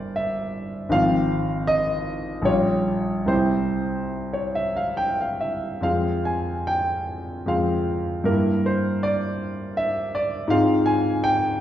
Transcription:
grand piano
Already playing: G1 G3 A#3 E4 A#4 C5 D5
0.16 E5
0.89 G#1 F3 C4 F4 F5
1.67 D#5
2.42 A#1 G3 C#4 C#5
2.46 F4
3.26 C2 G3 C4 E4 C5
4.33 C#5
4.55 E5
4.77 F5
4.97 G5
5.21 F5
5.40 E5
5.81 F2 G#3 C4 F4 F5
6.25 G#5
6.67 G5
7.46 F2 G#3 C4 F4 F5
8.24 G2 A#3 E4 A#4
8.66 C5
9.03 D5
9.77 E5
10.15 D5
10.48 G#2 G#3 C4 F4 F5
10.86 G#5
11.24 G5

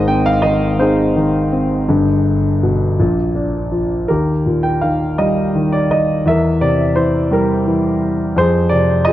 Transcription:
grand piano
Already playing: G#1 G#2 G#4 C5 D#5
0.07 C4 G5
0.26 F5
0.42 D#3 D#5
0.78 C4 D#4 G#4 C5
1.16 D#3
1.52 C4
1.89 G1 G2
2.63 B2
2.99 A#1 A#2
3.35 D4
3.72 F3
4.08 D#2 G4 A#4
4.46 A#2
4.63 G5
4.81 D#3 F5
5.18 G3 D#5
5.55 D#3
5.72 D5
5.91 D#5
6.25 E2 A#4 E5
6.61 C3 D5
6.96 E3 C5
7.31 G3 A#4
7.67 E3
8.36 F2 G#4 C5
8.69 C3 D5
9.05 F3 G#4 D#5

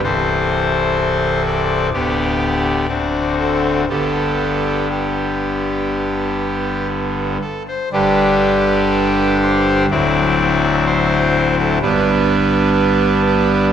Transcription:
pipe organ
0.03 C1 C2 E3 C4 A4 C5
1.46 D5
1.93 D1 D2 D3 B3 G4 D5
2.88 D1 D2 D3 C4 F#4
3.39 A4
3.89 G1 G2 D3 B3 G4 A4
4.89 G4
7.41 A4
7.68 C5
7.92 G1 G2 D3 D4 G4 B4
9.42 C5
9.90 D1 D2 F#3 C4 E4 D5
10.85 C5
11.59 A4
11.82 G1 G2 G3 B3 D4 B4
13.26 B4

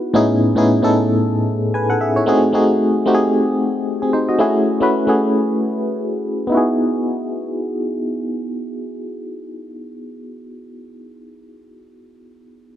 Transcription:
fm electric piano
Already playing: B3 D#4 E4 F#4 G#4 B4
0.14 A2 B3 C#4 D#4 E4 G#4
0.55 A2 B3 C#4 D#4 E4 G#4
0.82 A2 B3 C#4 D#4 E4 A4
1.74 B4 G#5
1.90 A4 F#5
2.01 G#4 E5
2.16 E4 C#5
2.26 A3 C4 D#4 F#4 G#4
2.53 A3 C4 D#4 F#4 G#4
3.06 A3 C4 D#4 F#4 G4
3.15 G#4
4.02 C4 G#4
4.13 D#4 C5
4.29 F#4 D#5
4.38 A3 C#4 E4 F#4 G#4
4.80 A3 C#4 E4 F#4 B4
5.07 A3 C#4 E4 F#4 G#4
6.47 B3 D#4
6.52 E4 F#4
6.57 G#4

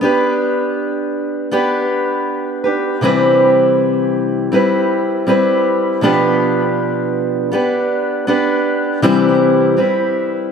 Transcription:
steel-string acoustic guitar
0.01 B3 D4 G4 B4
1.51 B3 D4 G4 B4
2.64 D4 G4 B4
3.01 C3 E3 G3 C4 E4 B4
4.52 G3 C4 E4 B4
5.27 G3 C4 E4 B4
6.01 B2 F3 B3 D4 G4 B4
7.52 B3 D4 G4 B4
8.27 B3 D4 G4 B4
9.02 C3 E3 G3 C4 E4 B4
9.77 G3 C4 E4 B4

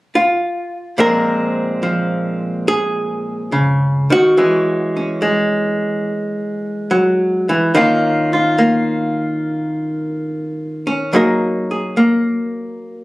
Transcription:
hollow-body jazz guitar
0.15 F4
0.98 A#2 F3 G#3 C4 A#4
1.83 F3
2.68 G#4
3.52 C#3
4.10 D#3 F#4
4.37 E3 G#3 C#4
4.97 C#4
5.22 G#3
6.91 F#3
7.49 E3
7.75 D#3 A#3 C#4 F4
8.33 F4
8.58 A#3
10.87 C#4
11.13 F#3 A#3 D#4 G#4 A#4
11.71 G#4
11.97 A#3

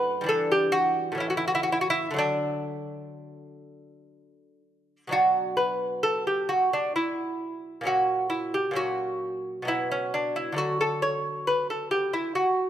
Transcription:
lute
Already playing: F#2 A3 D4 B4
0.21 G2 E3
0.26 D4 A4
0.52 G4
0.72 F#4
1.12 A2 E3
1.18 C#4 E4
1.30 F#4
1.37 E4
1.48 F#4
1.55 E4
1.63 F#4
1.72 E4
1.81 F#4
1.90 E4
2.11 D3 F#3
2.16 A3 D4
5.07 B2 F#3 D4
5.12 F#4
5.57 B4
6.03 A4
6.27 G4
6.49 F#4
6.73 D4
6.96 E4
7.81 A#2 F#3
7.85 C#4 F#4
8.30 E4
8.54 G4
8.71 A#2 F#3
8.75 C#4 F#4
9.62 B2 F#3
9.67 B3 E4
9.91 C#4
10.14 D4
10.36 E4
10.52 D3 F#3 A3
10.58 F#4
10.81 A4
11.02 C#5
11.47 B4
11.70 A4
11.91 G4
12.13 E4
12.35 F#4

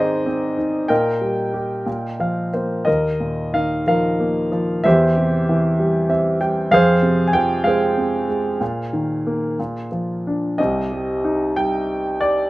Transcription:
grand piano
Already playing: G#2 D#3 C4 D#4 G#4 C5 D5 D#5
0.26 C4
0.58 D#4
0.88 A#2 A#4 D#5 G5
1.21 G3
1.54 G4
1.86 A#2
2.20 F3 F5
2.54 A#3 C5
2.85 D#2 A#4 D#5
3.20 A#2
3.54 D#3 F5
3.87 F3 A#4 F5
4.20 A#3
4.52 F3
4.84 E2 G4 C5 E5
5.17 C3
5.49 E3
5.79 G3
6.09 C4 E5
6.40 G3 G5
6.71 F2 G#4 C5 F5
7.02 C3
7.28 G#5
7.33 F3 G5
7.64 G#3 C5 F5
7.68 G#4
7.98 C4
8.29 G#3
8.61 A#2
8.93 D#3
9.27 A#3
9.59 A#2
9.92 F3
10.27 D4
10.58 C2 C3 G4 D#5
10.92 G3
11.24 D#4
11.56 G3 G5
12.21 D5

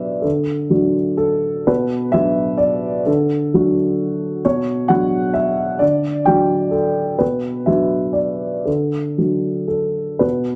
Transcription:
upright piano
Already playing: B2 F#3 D4 F#4 B4 D5 E5
0.22 D3 A4
0.70 F#3 D4 F#4
1.17 A4
1.67 B2 B4
2.12 F#3 D4 F#4 E5
2.58 D5
3.06 D3 A4
3.54 F#3 D4 F#4
4.45 B2 C#5
4.88 F#3 D4 F#4 F#5
5.34 E5
5.79 D3 D5
6.25 F#3 D4 F#4 G5
6.71 A4
7.19 B2 B4
7.66 F#3 D4 F#4 E5
8.13 D5
8.65 D3 A4
9.18 F#3 D4 F#4
9.68 A4
10.19 B2 B4

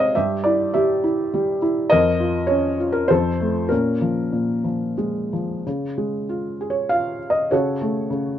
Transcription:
felt piano
Already playing: G#2 C3 G#3 C4 D#4 C#5 D#5 F5
0.15 G2 G4 E5
0.44 E4 D5
0.74 G3 G4 E5
1.04 E4
1.34 G3
1.62 E4
1.90 F2 A#4 D#5
2.20 F4
2.47 C#4 C#5
2.80 F4
2.93 A#4
3.08 F2 A4 C5
3.41 A3
3.69 A#2 C#4 A#4
4.01 F3
4.32 A#2
4.64 F3
4.98 G#3
5.33 F3
5.66 C#3
5.98 G#3
6.29 F4
6.61 G#4
6.70 C#5
6.90 F4 F5
7.30 D#5
7.51 C#3 F#4 A4 C#5
7.81 A3
8.10 C#3

